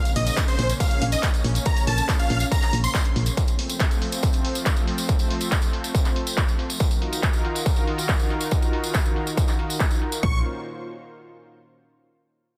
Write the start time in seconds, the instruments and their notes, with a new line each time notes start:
Already playing: analog synth pad C#3 A#3 C#4, supersaw synth F5
0.05 closed hi-hat, tambourine
0.16 fm bass A#1, supersaw synth D#5, open hi-hat
0.27 closed hi-hat, tambourine
0.37 kick, clap, closed hi-hat, tambourine
0.48 supersaw synth C5, closed hi-hat, tambourine
0.59 fm bass A#1, open hi-hat
0.69 closed hi-hat, tambourine
0.80 supersaw synth F5, kick, closed hi-hat, tambourine
0.91 closed hi-hat, tambourine
1.02 fm bass A#1, open hi-hat
1.12 supersaw synth D#5, closed hi-hat, tambourine
1.23 kick, clap, closed hi-hat, tambourine
1.34 closed hi-hat, tambourine
1.44 fm bass A#1, open hi-hat
1.55 closed hi-hat, tambourine
1.65 supersaw synth A#5, kick, closed hi-hat, tambourine
1.77 closed hi-hat, tambourine
1.87 fm bass A#1, supersaw synth A5, open hi-hat
1.98 closed hi-hat, tambourine
2.09 kick, clap, closed hi-hat, tambourine
2.19 supersaw synth F5, closed hi-hat, tambourine
2.30 fm bass A#1, open hi-hat
2.40 closed hi-hat, tambourine
2.51 supersaw synth A#5, kick, closed hi-hat, tambourine
2.62 clap, closed hi-hat, tambourine
2.73 fm bass A#1, open hi-hat
2.84 supersaw synth C6, closed hi-hat, tambourine
2.94 kick, clap, closed hi-hat, tambourine
3.04 closed hi-hat, tambourine
3.16 fm bass A#1, open hi-hat
3.26 closed hi-hat, tambourine
3.37 analog synth pad F3 A3 C4, kick, closed hi-hat, tambourine
3.48 closed hi-hat, tambourine
3.59 open hi-hat
3.70 closed hi-hat, tambourine
3.80 kick, clap, closed hi-hat, tambourine
3.91 closed hi-hat, tambourine
4.02 open hi-hat
4.12 closed hi-hat, tambourine
4.23 kick, closed hi-hat, tambourine
4.33 closed hi-hat, tambourine
4.45 open hi-hat
4.55 closed hi-hat, tambourine
4.66 kick, clap, closed hi-hat, tambourine
4.76 closed hi-hat, tambourine
4.88 open hi-hat
4.98 closed hi-hat, tambourine
5.09 kick, closed hi-hat, tambourine
5.19 closed hi-hat, tambourine
5.30 open hi-hat
5.41 closed hi-hat, tambourine
5.52 kick, clap, closed hi-hat, tambourine
5.62 closed hi-hat, tambourine
5.73 open hi-hat
5.84 closed hi-hat, tambourine
5.95 kick, closed hi-hat, tambourine
6.05 clap, closed hi-hat, tambourine
6.16 open hi-hat
6.27 closed hi-hat, tambourine
6.37 kick, clap, closed hi-hat, tambourine
6.48 closed hi-hat, tambourine
6.59 open hi-hat
6.70 closed hi-hat, tambourine
6.80 analog synth pad D#3 D#4 F4 F#4 A#4, kick, closed hi-hat, tambourine
6.91 closed hi-hat, tambourine
7.02 open hi-hat
7.13 closed hi-hat, tambourine
7.23 kick, clap, closed hi-hat, tambourine
7.33 closed hi-hat, tambourine
7.45 open hi-hat
7.55 closed hi-hat, tambourine
7.66 kick, closed hi-hat, tambourine
7.76 closed hi-hat, tambourine
7.87 open hi-hat
7.98 closed hi-hat, tambourine
8.09 kick, clap, closed hi-hat, tambourine
8.19 closed hi-hat, tambourine
8.30 open hi-hat
8.41 closed hi-hat, tambourine
8.51 kick, closed hi-hat, tambourine
8.62 closed hi-hat, tambourine
8.73 open hi-hat
8.84 closed hi-hat, tambourine
8.94 kick, clap, closed hi-hat, tambourine
9.05 closed hi-hat, tambourine
9.16 open hi-hat
9.27 closed hi-hat, tambourine
9.37 kick, closed hi-hat, tambourine
9.48 clap, closed hi-hat, tambourine
9.59 open hi-hat
9.70 closed hi-hat, tambourine
9.80 kick, clap, closed hi-hat, tambourine
9.91 closed hi-hat, tambourine
10.02 open hi-hat
10.12 closed hi-hat, tambourine
10.23 fm bass A#1, analog synth pad A#2 A#3 C#4 F4 C5, supersaw synth C#6, kick